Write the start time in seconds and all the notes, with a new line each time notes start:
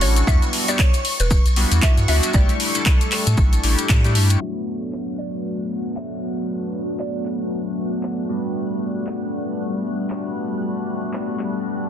Already playing: A3 C#4 D4 E4 F#4 C#6
0.01 A1 C#5, open hi-hat
0.16 closed hi-hat, maracas
0.27 E2 G3 B3 D4 E4 F#4 E5, kick, maracas
0.42 closed hi-hat, maracas
0.53 open hi-hat
0.68 G3 B3 D4 E4 G4 D5, closed hi-hat, maracas
0.79 C#5, kick, clap, maracas
0.94 closed hi-hat, maracas
1.05 open hi-hat
1.20 E1 B4, closed hi-hat, maracas
1.31 kick, maracas
1.46 B1, closed hi-hat, maracas
1.56 G3 B3 D4 E4 F#4, open hi-hat
1.72 E2, closed hi-hat, maracas
1.82 E5, kick, clap, maracas
1.97 G2, closed hi-hat, maracas
2.08 D2 G3 B3 D4 E4 F#4 E5, open hi-hat
2.23 closed hi-hat, maracas
2.34 A1 G3 A3 D4 E4 G4 D5, kick, maracas
2.49 closed hi-hat, maracas
2.60 open hi-hat
2.75 G3 A3 D4 E4 A4, closed hi-hat, maracas
2.86 kick, clap, maracas
3.01 closed hi-hat, maracas
3.12 clap, open hi-hat
3.27 A2, closed hi-hat, maracas
3.37 A1, kick, maracas
3.53 closed hi-hat, maracas
3.63 A1 G3 A3 D4 E4 G4, open hi-hat
3.78 closed hi-hat, maracas
3.89 A2, kick, clap, maracas
4.04 G3 A3 D4 E4 G4, closed hi-hat, maracas
4.15 G2, open hi-hat
4.30 closed hi-hat, maracas
4.41 F#3 A3 B3 D4 F#4 E5 F#6, downlifter
4.58 F#4
4.93 clap
5.18 D5
5.41 D5
5.96 E5, clap
7.00 D5, clap
7.26 clap
8.03 clap
8.29 G3 A3 B3 D4 F#4
8.52 B5
8.87 A5
9.07 clap
10.10 clap
11.13 clap
11.39 clap